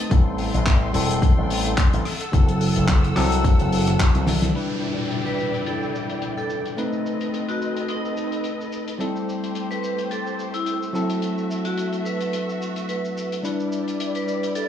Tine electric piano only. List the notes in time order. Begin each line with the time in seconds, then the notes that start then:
0.10 G3 C4 E4 A4
0.93 G3 C4 E4 A4
2.32 F#3 C4 E4 A4
3.15 F#3 C4 E4 A4
4.54 G3 D4 E4 B4
6.77 A3 C4 D#4 B4
8.99 G3 C4 E4 A4
10.93 F#3 C4 E4 A4
13.43 G3 D4 E4 B4